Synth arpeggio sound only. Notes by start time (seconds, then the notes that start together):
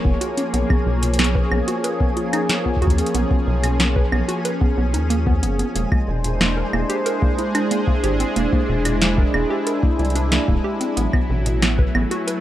0.05 B3
0.21 F#4
0.37 C#4
0.54 B3
0.70 B3
0.86 B2
1.03 B2
1.19 B3
1.35 B4
1.51 B3
1.68 F#4
1.84 B4
2.00 B3
2.17 F4
2.33 D#4
2.49 B3
2.66 B3
2.82 F#4
2.98 C#4
3.15 B3
3.31 B3
3.47 B2
3.63 B2
3.80 B3
3.96 B4
4.12 B3
4.28 F#4
4.45 B4
4.61 B3
4.77 B3
4.94 D#4
5.10 A#3
5.26 B3
5.43 B3
5.59 B3
5.75 A#3
5.92 A#3
6.08 A#2
6.24 A#2
6.41 A#3
6.57 A#4
6.73 A#3
6.89 G4
7.06 A#4
7.22 A#3
7.38 E4
7.55 D4
7.71 A#3
7.87 A#3
8.04 G4
8.20 C4
8.36 A#3
8.53 A#3
8.69 A#2
8.85 A#2
9.02 A#3
9.18 A#4
9.34 A#3
9.50 G4
9.67 A#4
9.83 A#3
9.99 E4
10.15 D4
10.32 A#3
10.48 A#3
10.64 G4
10.81 C4
10.97 B3
11.13 B3
11.30 B2
11.46 B2
11.62 B3
11.79 B4
11.95 B3
12.11 F#4
12.27 B4